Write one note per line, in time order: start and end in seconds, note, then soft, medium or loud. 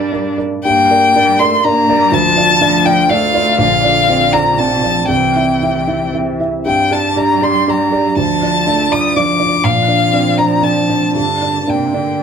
0.00 0.65 G2 soft
0.00 0.39 G3 medium
0.00 0.65 G3 medium
0.00 0.12 D4 soft
0.00 0.37 D4 medium
0.00 0.65 D4 medium
0.00 0.12 A#4 soft
0.00 0.12 D5 soft
0.00 0.65 D5 medium
0.12 0.36 D4 soft
0.12 0.36 A#4 soft
0.12 0.36 D5 soft
0.38 0.62 A#4 soft
0.38 0.62 D5 soft
0.64 0.90 G2 medium
0.64 1.17 A#3 medium
0.64 2.09 A#3 medium
0.64 2.10 D4 medium
0.64 5.06 D5 medium
0.64 1.40 G5 loud
0.91 1.13 A#4 soft
0.91 1.13 D5 soft
1.15 1.40 G3 medium
1.15 1.37 D4 soft
1.15 1.38 A#4 medium
1.15 1.38 D5 medium
1.39 1.64 A3 medium
1.39 1.62 A#4 soft
1.39 1.62 D5 medium
1.39 1.65 C6 medium
1.64 1.91 A#3 medium
1.64 1.86 D4 soft
1.64 1.87 A#4 medium
1.64 1.87 D5 medium
1.64 2.15 A#5 medium
1.89 2.16 G3 medium
1.89 2.11 A#4 medium
1.89 2.11 D5 medium
2.12 2.36 D2 medium
2.12 2.60 F3 medium
2.12 3.59 A3 medium
2.12 5.10 F4 medium
2.12 2.87 A5 loud
2.36 2.58 F4 medium
2.36 2.59 D5 medium
2.61 3.08 F3 medium
2.61 2.83 D4 medium
2.61 2.83 F4 medium
2.61 2.83 D5 medium
2.85 3.07 F4 medium
2.85 3.08 D5 medium
2.85 3.11 G5 loud
3.09 3.60 A3 medium
3.09 3.32 D4 medium
3.09 3.32 F4 medium
3.09 3.32 D5 medium
3.09 3.58 F5 loud
3.34 3.56 F4 medium
3.34 3.56 D5 medium
3.58 3.82 A#1 medium
3.58 3.82 D3 medium
3.58 6.66 C4 medium
3.58 4.34 F5 loud
3.83 4.59 D3 medium
3.83 4.05 F4 medium
3.83 4.06 D5 medium
4.09 4.31 C4 soft
4.09 4.31 F4 soft
4.09 4.31 D5 soft
4.33 4.56 F4 soft
4.33 4.56 D5 medium
4.33 4.60 A#5 medium
4.58 4.85 C3 medium
4.58 4.81 C4 soft
4.58 4.81 F4 soft
4.58 4.82 D5 soft
4.58 5.08 A5 medium
4.83 5.09 F3 soft
4.83 5.07 F4 soft
4.83 5.07 D5 soft
5.08 5.34 C2 soft
5.08 6.43 E3 soft
5.08 6.67 E4 medium
5.08 6.66 E5 medium
5.08 6.11 G5 medium
5.36 5.59 E4 soft
5.36 5.60 E5 soft
5.62 5.86 C4 soft
5.62 5.86 E4 soft
5.62 5.86 E5 soft
5.87 6.11 E4 soft
5.87 6.11 E5 soft
6.14 6.37 C4 soft
6.14 6.38 E4 soft
6.14 6.38 E5 soft
6.39 6.63 E4 soft
6.39 6.64 E5 soft
6.65 6.91 G2 soft
6.65 8.14 G3 medium
6.65 9.65 D4 medium
6.65 8.18 G4 soft
6.65 12.23 D5 medium
6.65 6.94 G5 medium
6.91 7.15 G4 soft
6.91 7.15 D5 soft
6.91 7.19 A5 medium
7.16 7.39 D4 soft
7.16 7.40 G4 soft
7.16 7.40 D5 soft
7.16 7.45 A#5 medium
7.42 7.65 G4 soft
7.42 7.65 D5 soft
7.42 7.71 C6 medium
7.67 7.90 D4 soft
7.67 7.90 G4 soft
7.67 7.90 D5 soft
7.67 8.17 A#5 medium
7.92 8.15 G4 soft
7.92 8.15 D5 soft
8.17 8.41 D2 medium
8.17 8.68 F3 medium
8.17 11.15 F4 medium
8.17 8.93 A5 medium
8.42 8.65 F4 soft
8.42 8.65 D5 soft
8.66 8.91 A3 medium
8.66 8.89 D4 soft
8.66 8.89 F4 soft
8.66 8.89 D5 soft
8.91 9.18 G3 medium
8.91 9.13 F4 soft
8.91 9.14 D5 soft
8.91 9.18 D#6 medium
9.16 9.65 F3 medium
9.16 9.38 D4 soft
9.16 9.38 F4 soft
9.16 9.38 D5 soft
9.16 9.66 D6 medium
9.40 9.62 F4 soft
9.40 9.62 D5 soft
9.64 9.88 A#2 soft
9.64 11.17 F3 medium
9.64 11.15 C4 medium
9.64 10.39 F5 medium
9.88 10.10 D4 soft
9.88 10.11 D5 soft
10.13 10.35 C4 soft
10.13 10.36 D4 soft
10.13 10.36 D5 soft
10.38 10.61 D4 soft
10.38 10.61 D5 soft
10.38 10.65 A#5 medium
10.63 10.86 C4 soft
10.63 10.86 D4 soft
10.63 10.86 D5 soft
10.63 11.15 A5 medium
10.89 11.12 D4 soft
10.89 11.13 D5 soft
11.15 11.40 G2 soft
11.15 11.63 D3 soft
11.15 12.23 A#3 soft
11.15 12.23 D4 soft
11.15 11.71 A5 medium
11.42 11.65 D4 soft
11.42 11.65 D5 soft
11.67 11.96 C3 soft
11.67 11.91 A#3 soft
11.67 11.91 D4 soft
11.67 11.92 D5 soft
11.67 12.23 G5 soft
11.94 12.21 D3 soft
11.94 12.18 D4 soft
11.94 12.18 D5 soft
12.20 12.23 G3 soft